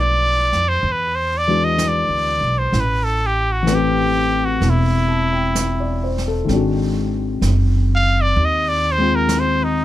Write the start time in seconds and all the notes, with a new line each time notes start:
Already playing: B1 F3 A3 B3 D4 F4
0.00 D5
0.52 F2, snare
0.68 C5
0.83 E2, brush sweep
0.92 B4
1.15 C5
1.38 D5
1.47 E3 G#3 B3 D4 F#4
1.64 D#5
1.78 brush sweep, snare, hi-hat pedal
1.88 D5
2.09 D2
2.41 B1
2.58 C5
2.72 A1, brush sweep, snare
2.80 B4
3.04 A4
3.26 G4
3.52 F#4
3.63 E3 A3
3.67 B4, brush sweep, snare, hi-hat pedal
3.72 C4 G4
4.45 F#4
4.61 E1, brush sweep, snare
4.70 E4
5.08 A5
5.33 G5
5.55 E5, brush sweep, snare, hi-hat pedal
5.80 D5
6.04 C5
6.18 snare
6.28 A4
6.45 G#1 D#3 G#3
6.49 C4 D4, brush sweep, snare
6.55 F#4
7.41 F#1, brush sweep, snare, hi-hat pedal
7.95 F5
8.21 D5
8.36 D#2, brush sweep
8.45 D#5
8.69 D5
8.91 C5
8.98 G#3 C4 F4
9.15 A#4
9.29 brush sweep, snare, hi-hat pedal
9.39 C5
9.64 D#4